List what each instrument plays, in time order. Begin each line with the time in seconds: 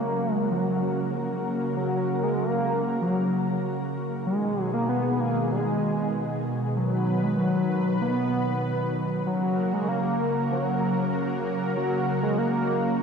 Already playing: analog synth pad C#3 F#3 A#3 F#4 A#4, analog synth lead A#3
0.34 analog synth lead G#3
0.51 analog synth lead F#3
1.12 analog synth lead F3
1.76 analog synth lead F#3
2.23 analog synth lead G#3
2.39 analog synth lead A#3
3.02 analog synth lead F#3
4.26 analog synth pad B2 D#3 G#3 G#4, analog synth lead G#3
4.74 analog synth lead A#3
4.89 analog synth lead B3
5.20 analog synth lead A#3
5.52 analog synth lead G#3
6.76 analog synth pad F#3 B4, analog synth lead F#3
7.23 analog synth lead G#3
7.39 analog synth lead F#3
8.01 analog synth lead B3
9.26 analog synth pad C#3 A#3 F#4 A#4, analog synth lead F#3
9.73 analog synth lead G#3
9.89 analog synth lead A#3
10.51 analog synth lead F#3
11.77 analog synth lead F#3
12.23 analog synth lead G#3
12.39 analog synth lead A#3